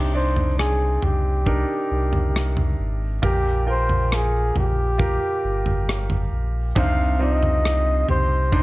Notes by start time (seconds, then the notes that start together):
Already playing: C2 C3 D4 D#4 G4 C5
0.14 D4 D#4 C5 D5
0.36 floor tom
0.59 G#4, cross-stick
1.02 C2 G4, floor tom
1.46 D4 D#4 A#4, kick
1.91 C2
2.13 floor tom
2.36 cross-stick
2.57 floor tom
2.79 G#1
3.22 A#1 A#2 F4 G4 A#4, kick, floor tom
3.67 F4 A#4 C5 G5
3.89 floor tom
4.12 G#4, cross-stick
4.56 A#1 G4, floor tom
4.98 F4 G4 A#4, kick, floor tom
5.44 G1
5.66 floor tom
5.89 cross-stick
6.10 floor tom
6.32 A#1
6.75 C2 C3 D4 D#4 C5 F5, kick, floor tom
7.19 C4 D#4 F4 D#5
7.43 floor tom
7.65 cross-stick
8.09 C2 G4 C5, floor tom
8.52 G3 D4 D#4 C5, kick, floor tom